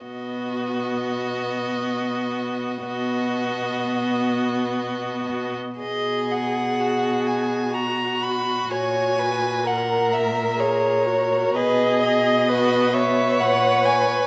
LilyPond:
<<
  \new Staff \with { instrumentName = "Violin" } { \time 3/4 \key b \major \tempo 4 = 63 dis''2. | dis''2. | dis''8 fis''4 gis''8 ais''8 b''8 | gis''4 fis''8 e''8 cis''4 |
b'8 dis''4 e''8 fis''8 gis''8 | }
  \new Staff \with { instrumentName = "Viola" } { \time 3/4 \key b \major b2. | b2. | gis'2 fis'4~ | fis'4 ais'4 gis'8 fis'8 |
dis''4 b'8 cis''4. | }
  \new Staff \with { instrumentName = "Violin" } { \time 3/4 \key b \major fis'2. | fis'2. | gis'4 fis'4 fis'4 | cis''8 b'8 ais'2 |
gis'4 fis'8 b'4. | }
  \new Staff \with { instrumentName = "Cello" } { \clef bass \time 3/4 \key b \major b,2. | b,2. | b,2. | ais,2. |
b,2 ais,4 | }
>>